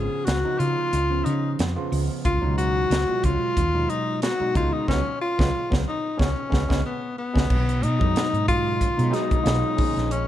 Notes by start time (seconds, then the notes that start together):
Already playing: C#3 F3 B3 C#4 G#4
0.25 C#2 F#4, snare, closed hi-hat
0.45 C#3 F3 B3 D#4
0.59 C#3 F4, closed hi-hat
0.93 C#2, closed hi-hat
1.10 C#3 F3 B3 C#4
1.25 C#3 D#4, closed hi-hat
1.59 F2, snare, closed hi-hat
1.76 C#3 F3 B3 F4, muted fretless electric bass stroke
1.92 C#2, open hi-hat
2.25 C#2 F4, kick, closed hi-hat
2.42 C#2 B2 F#3 G#3 D#4
2.58 F#4, closed hi-hat
2.90 C#2, snare, closed hi-hat
3.07 B2 F#3 G#3 F4, muted fretless electric bass stroke
3.24 C#2 F4, kick, closed hi-hat
3.57 D#2, kick, closed hi-hat
3.74 B2 F#3 G#3 D#4
3.90 D#4, closed hi-hat
4.22 F#4, snare, closed hi-hat
4.40 B2 F#3 G#3 D#4, muted fretless electric bass stroke
4.55 C#2 C#3 G#3 B3 D#4 F4, kick, closed hi-hat
4.73 D#4
4.88 C#2 F#3 G#3 B3 C#4, kick, snare
5.22 F4
5.39 C#2 F#3 G#3 B3, kick, snare
5.70 C#2 F#3 G#3 B3, kick, snare
5.88 D#4
6.17 C#2 G#3 B3 C#4, kick, snare
6.50 C#2 G#3 B3 C#4, kick, snare
6.69 C#2 G#3 B3 C#4, kick, snare
6.86 B3
7.18 B3
7.34 C#2 G#3 B3 C#4, kick, snare
7.50 B1, kick, crash
7.69 closed hi-hat
7.82 B2 D#4, closed hi-hat
7.99 F#2 B2 F#3 G#3 D#4, kick
8.16 snare, closed hi-hat
8.33 G#2, closed hi-hat
8.48 F4, kick, closed hi-hat
8.81 kick, closed hi-hat
8.97 B2 F#3 G#3 D#4, closed hi-hat
9.11 B2 F#3 G#3 D#4, closed hi-hat
9.15 snare
9.31 muted fretless electric bass stroke, kick, closed hi-hat
9.43 B1 B2 F#3 G#3 F4, snare, closed hi-hat
9.77 A#2 F3 G#3 C#4, muted fretless electric bass stroke, kick, open hi-hat
9.97 A#1, snare, closed hi-hat
10.11 C#4, closed hi-hat